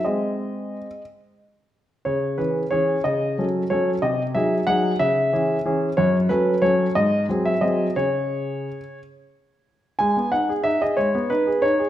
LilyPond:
\new Staff \with { instrumentName = "Grand piano" } { \time 6/8 \key cis \minor \tempo 4. = 61 << { dis''4. r4. | cis''8 b'8 cis''8 dis''4 cis''8 | dis''8 e''8 fis''8 e''4. | cis''8 b'8 cis''8 dis''8. e''16 dis''8 |
cis''2~ cis''8 r8 | \key gis \minor gis''8 fis''8 e''16 dis''16 cis''8 b'8 cis''8 | } \\ { <gis bis gis'>4. r4. | cis8 <e cis' gis'>8 <e cis' gis'>8 cis8 <fis cis' a'>8 <fis cis' a'>8 | bis,8 <fis dis' gis'>8 <fis dis' gis'>8 cis8 <e cis' gis'>8 <e cis' gis'>8 | fis,8 <fis cis' a'>8 <fis cis' a'>8 gis,8 <fis bis gis'>8 <fis bis gis'>8 |
<cis cis' gis'>4. r4. | gis16 b16 dis'16 gis'16 dis'16 gis'16 gis16 b16 dis'16 gis'16 dis'16 gis'16 | } >> }